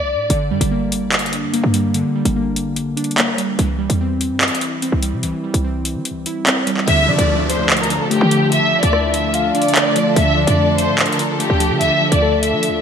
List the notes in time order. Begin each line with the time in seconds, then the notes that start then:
Already playing: D5
0.00 C2
0.15 A2
0.29 G1 D3, closed hi-hat
0.51 G2 G3
0.61 G1, closed hi-hat
0.71 A#3
0.92 closed hi-hat
1.12 clap, closed hi-hat
1.19 closed hi-hat
1.26 closed hi-hat
1.33 D4, closed hi-hat
1.43 G2
1.53 A#3, closed hi-hat
1.64 G2
1.74 G3, closed hi-hat
1.94 D3, closed hi-hat
2.15 G3
2.25 G1, closed hi-hat
2.36 A#3
2.56 closed hi-hat
2.76 closed hi-hat
2.97 D4, closed hi-hat
3.04 closed hi-hat
3.11 closed hi-hat
3.18 A#3, clap, closed hi-hat
3.38 G3, closed hi-hat
3.59 C2 E3, closed hi-hat
3.79 G3
3.90 E2, closed hi-hat
4.01 C4
4.21 closed hi-hat
4.31 G2
4.41 clap, closed hi-hat
4.48 closed hi-hat
4.55 closed hi-hat
4.61 E4, closed hi-hat
4.82 C4, closed hi-hat
4.92 C2
5.03 G3, closed hi-hat
5.13 C3
5.23 C2 E3, closed hi-hat
5.44 G3
5.54 C2, closed hi-hat
5.64 C4
5.85 closed hi-hat
5.95 E3
6.05 closed hi-hat
6.10 C2
6.26 E4, closed hi-hat
6.47 C4, clap, closed hi-hat
6.67 G3, closed hi-hat
6.77 clap
6.88 D2 D3 D4 F4 A4 E5, closed hi-hat, downlifter
7.08 D3 F3 D5
7.18 D2 D5, closed hi-hat
7.29 A3
7.49 C5, closed hi-hat
7.70 clap, closed hi-hat
7.77 A#4, closed hi-hat
7.83 closed hi-hat
7.90 D4, closed hi-hat
8.00 D3 A4
8.11 A3 G4, closed hi-hat
8.21 D3
8.31 F3, closed hi-hat
8.52 D3 E5, closed hi-hat
8.72 F3
8.83 D2 D5, closed hi-hat
8.93 A3 E5, cross-stick
9.13 E5, closed hi-hat
9.34 F5, closed hi-hat
9.55 D4 D5, closed hi-hat
9.62 closed hi-hat
9.68 closed hi-hat
9.75 A3, clap, closed hi-hat
9.96 F3, closed hi-hat
10.16 D2 D3 E5, closed hi-hat
10.37 F3 D5
10.47 F2 D5, closed hi-hat
10.58 A3
10.78 C5, closed hi-hat
10.88 A2
10.99 clap, closed hi-hat
11.06 A#4, closed hi-hat
11.12 closed hi-hat
11.19 D4, closed hi-hat
11.29 A4
11.40 A3 G4, closed hi-hat
11.50 D2
11.60 F3, closed hi-hat
11.71 D3
11.81 D2 D3 E5, closed hi-hat
12.01 F3
12.12 D2 D5, closed hi-hat
12.22 A3 A4
12.42 E5, closed hi-hat
12.53 F3
12.63 closed hi-hat
12.68 D2